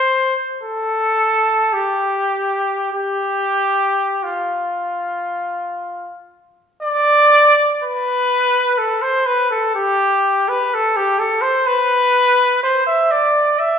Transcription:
0, 0, Header, 1, 2, 480
1, 0, Start_track
1, 0, Tempo, 995025
1, 314, Tempo, 1086957
1, 794, Tempo, 1204819
1, 1274, Time_signature, 3, 2, 24, 8
1, 1274, Tempo, 1298701
1, 1754, Tempo, 1234568
1, 2234, Tempo, 1333333
1, 2714, Tempo, 981997
1, 4634, Tempo, 952381
1, 6172, End_track
2, 0, Start_track
2, 0, Title_t, "Trumpet"
2, 0, Program_c, 0, 56
2, 0, Note_on_c, 0, 72, 86
2, 169, Note_off_c, 0, 72, 0
2, 305, Note_on_c, 0, 69, 80
2, 791, Note_on_c, 0, 67, 66
2, 798, Note_off_c, 0, 69, 0
2, 1264, Note_off_c, 0, 67, 0
2, 1266, Note_on_c, 0, 67, 76
2, 1752, Note_on_c, 0, 65, 52
2, 1757, Note_off_c, 0, 67, 0
2, 2483, Note_off_c, 0, 65, 0
2, 2722, Note_on_c, 0, 74, 104
2, 3184, Note_off_c, 0, 74, 0
2, 3212, Note_on_c, 0, 71, 96
2, 3678, Note_on_c, 0, 69, 77
2, 3685, Note_off_c, 0, 71, 0
2, 3794, Note_on_c, 0, 72, 84
2, 3801, Note_off_c, 0, 69, 0
2, 3911, Note_on_c, 0, 71, 84
2, 3919, Note_off_c, 0, 72, 0
2, 4028, Note_off_c, 0, 71, 0
2, 4031, Note_on_c, 0, 69, 77
2, 4149, Note_off_c, 0, 69, 0
2, 4152, Note_on_c, 0, 67, 89
2, 4511, Note_on_c, 0, 71, 76
2, 4518, Note_off_c, 0, 67, 0
2, 4637, Note_on_c, 0, 69, 78
2, 4644, Note_off_c, 0, 71, 0
2, 4748, Note_on_c, 0, 67, 80
2, 4756, Note_off_c, 0, 69, 0
2, 4863, Note_on_c, 0, 69, 79
2, 4870, Note_off_c, 0, 67, 0
2, 4978, Note_on_c, 0, 72, 85
2, 4985, Note_off_c, 0, 69, 0
2, 5103, Note_on_c, 0, 71, 94
2, 5110, Note_off_c, 0, 72, 0
2, 5587, Note_off_c, 0, 71, 0
2, 5591, Note_on_c, 0, 72, 83
2, 5703, Note_off_c, 0, 72, 0
2, 5706, Note_on_c, 0, 76, 84
2, 5831, Note_on_c, 0, 74, 83
2, 5838, Note_off_c, 0, 76, 0
2, 6073, Note_on_c, 0, 76, 83
2, 6081, Note_off_c, 0, 74, 0
2, 6172, Note_off_c, 0, 76, 0
2, 6172, End_track
0, 0, End_of_file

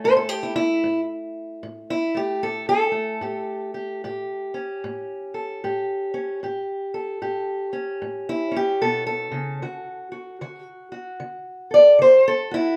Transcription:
0, 0, Header, 1, 2, 480
1, 0, Start_track
1, 0, Tempo, 797872
1, 24, Time_signature, 4, 2, 24, 8
1, 7679, End_track
2, 0, Start_track
2, 0, Title_t, "Steel-string acoustic guitar"
2, 0, Program_c, 0, 25
2, 0, Note_on_c, 0, 57, 53
2, 0, Note_on_c, 0, 61, 46
2, 26, Note_on_c, 0, 45, 75
2, 30, Note_on_c, 0, 72, 102
2, 97, Note_off_c, 0, 72, 0
2, 100, Note_on_c, 0, 69, 88
2, 171, Note_off_c, 0, 69, 0
2, 173, Note_off_c, 0, 61, 0
2, 173, Note_on_c, 0, 67, 73
2, 258, Note_on_c, 0, 64, 86
2, 310, Note_off_c, 0, 64, 0
2, 320, Note_off_c, 0, 67, 0
2, 335, Note_on_c, 0, 64, 115
2, 470, Note_off_c, 0, 45, 0
2, 504, Note_on_c, 0, 45, 74
2, 600, Note_off_c, 0, 64, 0
2, 948, Note_off_c, 0, 45, 0
2, 980, Note_on_c, 0, 45, 78
2, 1145, Note_on_c, 0, 64, 102
2, 1288, Note_off_c, 0, 57, 0
2, 1290, Note_on_c, 0, 57, 46
2, 1304, Note_off_c, 0, 64, 0
2, 1305, Note_on_c, 0, 67, 92
2, 1426, Note_off_c, 0, 45, 0
2, 1461, Note_on_c, 0, 45, 75
2, 1462, Note_on_c, 0, 69, 94
2, 1464, Note_off_c, 0, 67, 0
2, 1610, Note_off_c, 0, 69, 0
2, 1617, Note_on_c, 0, 69, 106
2, 1752, Note_off_c, 0, 57, 0
2, 1755, Note_on_c, 0, 57, 51
2, 1906, Note_off_c, 0, 45, 0
2, 1932, Note_on_c, 0, 45, 76
2, 1938, Note_on_c, 0, 67, 52
2, 2249, Note_off_c, 0, 67, 0
2, 2251, Note_on_c, 0, 67, 50
2, 2381, Note_off_c, 0, 45, 0
2, 2431, Note_on_c, 0, 45, 76
2, 2432, Note_off_c, 0, 67, 0
2, 2434, Note_on_c, 0, 67, 55
2, 2579, Note_off_c, 0, 69, 0
2, 2730, Note_off_c, 0, 57, 0
2, 2732, Note_on_c, 0, 61, 46
2, 2870, Note_off_c, 0, 45, 0
2, 2912, Note_on_c, 0, 45, 77
2, 3214, Note_on_c, 0, 69, 47
2, 3350, Note_off_c, 0, 45, 0
2, 3385, Note_off_c, 0, 67, 0
2, 3392, Note_on_c, 0, 67, 52
2, 3395, Note_on_c, 0, 45, 77
2, 3687, Note_off_c, 0, 61, 0
2, 3693, Note_on_c, 0, 61, 53
2, 3832, Note_off_c, 0, 45, 0
2, 3844, Note_off_c, 0, 61, 0
2, 3845, Note_off_c, 0, 67, 0
2, 3868, Note_on_c, 0, 45, 71
2, 3872, Note_on_c, 0, 67, 54
2, 3888, Note_off_c, 0, 69, 0
2, 4176, Note_on_c, 0, 69, 50
2, 4309, Note_off_c, 0, 45, 0
2, 4335, Note_off_c, 0, 67, 0
2, 4341, Note_on_c, 0, 45, 69
2, 4343, Note_on_c, 0, 67, 52
2, 4649, Note_on_c, 0, 61, 51
2, 4786, Note_off_c, 0, 45, 0
2, 4823, Note_on_c, 0, 45, 74
2, 4986, Note_off_c, 0, 69, 0
2, 4988, Note_on_c, 0, 64, 90
2, 5115, Note_off_c, 0, 61, 0
2, 5122, Note_on_c, 0, 61, 49
2, 5142, Note_off_c, 0, 67, 0
2, 5145, Note_off_c, 0, 64, 0
2, 5153, Note_on_c, 0, 67, 91
2, 5267, Note_off_c, 0, 45, 0
2, 5303, Note_on_c, 0, 69, 90
2, 5306, Note_on_c, 0, 47, 65
2, 5307, Note_off_c, 0, 67, 0
2, 5447, Note_off_c, 0, 69, 0
2, 5454, Note_on_c, 0, 69, 96
2, 5602, Note_off_c, 0, 47, 0
2, 5604, Note_on_c, 0, 49, 66
2, 5761, Note_off_c, 0, 61, 0
2, 5783, Note_off_c, 0, 49, 0
2, 5789, Note_on_c, 0, 50, 73
2, 5793, Note_on_c, 0, 66, 46
2, 6084, Note_off_c, 0, 66, 0
2, 6087, Note_on_c, 0, 66, 43
2, 6231, Note_off_c, 0, 50, 0
2, 6264, Note_on_c, 0, 50, 76
2, 6265, Note_off_c, 0, 66, 0
2, 6267, Note_on_c, 0, 66, 50
2, 6420, Note_off_c, 0, 69, 0
2, 6566, Note_off_c, 0, 66, 0
2, 6568, Note_on_c, 0, 66, 45
2, 6710, Note_off_c, 0, 50, 0
2, 6737, Note_on_c, 0, 50, 74
2, 7043, Note_on_c, 0, 69, 46
2, 7062, Note_on_c, 0, 74, 115
2, 7187, Note_off_c, 0, 50, 0
2, 7212, Note_on_c, 0, 50, 74
2, 7225, Note_off_c, 0, 74, 0
2, 7230, Note_on_c, 0, 72, 101
2, 7383, Note_off_c, 0, 69, 0
2, 7385, Note_on_c, 0, 69, 104
2, 7389, Note_off_c, 0, 72, 0
2, 7526, Note_off_c, 0, 66, 0
2, 7528, Note_on_c, 0, 66, 54
2, 7544, Note_on_c, 0, 64, 103
2, 7547, Note_off_c, 0, 69, 0
2, 7665, Note_off_c, 0, 50, 0
2, 7679, Note_off_c, 0, 64, 0
2, 7679, Note_off_c, 0, 66, 0
2, 7679, End_track
0, 0, End_of_file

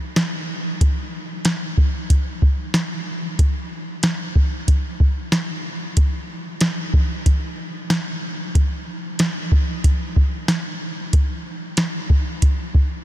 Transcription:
0, 0, Header, 1, 2, 480
1, 0, Start_track
1, 0, Tempo, 645161
1, 602, Time_signature, 4, 2, 24, 8
1, 9703, End_track
2, 0, Start_track
2, 0, Title_t, "Drums"
2, 121, Note_on_c, 9, 38, 99
2, 128, Note_on_c, 9, 42, 60
2, 196, Note_off_c, 9, 38, 0
2, 202, Note_off_c, 9, 42, 0
2, 602, Note_on_c, 9, 36, 90
2, 604, Note_on_c, 9, 42, 62
2, 676, Note_off_c, 9, 36, 0
2, 678, Note_off_c, 9, 42, 0
2, 1077, Note_on_c, 9, 42, 67
2, 1081, Note_on_c, 9, 38, 94
2, 1151, Note_off_c, 9, 42, 0
2, 1156, Note_off_c, 9, 38, 0
2, 1320, Note_on_c, 9, 36, 84
2, 1395, Note_off_c, 9, 36, 0
2, 1561, Note_on_c, 9, 36, 72
2, 1564, Note_on_c, 9, 42, 68
2, 1636, Note_off_c, 9, 36, 0
2, 1638, Note_off_c, 9, 42, 0
2, 1801, Note_on_c, 9, 36, 74
2, 1876, Note_off_c, 9, 36, 0
2, 2038, Note_on_c, 9, 38, 93
2, 2045, Note_on_c, 9, 42, 59
2, 2113, Note_off_c, 9, 38, 0
2, 2119, Note_off_c, 9, 42, 0
2, 2521, Note_on_c, 9, 36, 89
2, 2523, Note_on_c, 9, 42, 60
2, 2596, Note_off_c, 9, 36, 0
2, 2597, Note_off_c, 9, 42, 0
2, 2998, Note_on_c, 9, 42, 62
2, 3002, Note_on_c, 9, 38, 98
2, 3072, Note_off_c, 9, 42, 0
2, 3077, Note_off_c, 9, 38, 0
2, 3240, Note_on_c, 9, 36, 83
2, 3314, Note_off_c, 9, 36, 0
2, 3481, Note_on_c, 9, 36, 75
2, 3482, Note_on_c, 9, 42, 65
2, 3555, Note_off_c, 9, 36, 0
2, 3556, Note_off_c, 9, 42, 0
2, 3720, Note_on_c, 9, 36, 78
2, 3795, Note_off_c, 9, 36, 0
2, 3959, Note_on_c, 9, 38, 97
2, 3965, Note_on_c, 9, 42, 58
2, 4033, Note_off_c, 9, 38, 0
2, 4040, Note_off_c, 9, 42, 0
2, 4440, Note_on_c, 9, 36, 89
2, 4440, Note_on_c, 9, 42, 65
2, 4514, Note_off_c, 9, 42, 0
2, 4515, Note_off_c, 9, 36, 0
2, 4915, Note_on_c, 9, 42, 66
2, 4919, Note_on_c, 9, 38, 98
2, 4989, Note_off_c, 9, 42, 0
2, 4994, Note_off_c, 9, 38, 0
2, 5159, Note_on_c, 9, 36, 84
2, 5234, Note_off_c, 9, 36, 0
2, 5401, Note_on_c, 9, 36, 76
2, 5402, Note_on_c, 9, 42, 68
2, 5475, Note_off_c, 9, 36, 0
2, 5476, Note_off_c, 9, 42, 0
2, 5878, Note_on_c, 9, 38, 102
2, 5885, Note_on_c, 9, 42, 58
2, 5953, Note_off_c, 9, 38, 0
2, 5959, Note_off_c, 9, 42, 0
2, 6362, Note_on_c, 9, 36, 89
2, 6364, Note_on_c, 9, 42, 64
2, 6436, Note_off_c, 9, 36, 0
2, 6438, Note_off_c, 9, 42, 0
2, 6838, Note_on_c, 9, 42, 67
2, 6843, Note_on_c, 9, 38, 102
2, 6913, Note_off_c, 9, 42, 0
2, 6917, Note_off_c, 9, 38, 0
2, 7080, Note_on_c, 9, 36, 86
2, 7155, Note_off_c, 9, 36, 0
2, 7322, Note_on_c, 9, 36, 77
2, 7323, Note_on_c, 9, 42, 72
2, 7396, Note_off_c, 9, 36, 0
2, 7398, Note_off_c, 9, 42, 0
2, 7561, Note_on_c, 9, 36, 73
2, 7636, Note_off_c, 9, 36, 0
2, 7799, Note_on_c, 9, 38, 92
2, 7806, Note_on_c, 9, 42, 58
2, 7874, Note_off_c, 9, 38, 0
2, 7881, Note_off_c, 9, 42, 0
2, 8281, Note_on_c, 9, 36, 88
2, 8282, Note_on_c, 9, 42, 61
2, 8356, Note_off_c, 9, 36, 0
2, 8356, Note_off_c, 9, 42, 0
2, 8757, Note_on_c, 9, 42, 65
2, 8762, Note_on_c, 9, 38, 98
2, 8832, Note_off_c, 9, 42, 0
2, 8836, Note_off_c, 9, 38, 0
2, 9000, Note_on_c, 9, 36, 85
2, 9075, Note_off_c, 9, 36, 0
2, 9242, Note_on_c, 9, 36, 76
2, 9242, Note_on_c, 9, 42, 67
2, 9316, Note_off_c, 9, 36, 0
2, 9316, Note_off_c, 9, 42, 0
2, 9482, Note_on_c, 9, 36, 75
2, 9556, Note_off_c, 9, 36, 0
2, 9703, End_track
0, 0, End_of_file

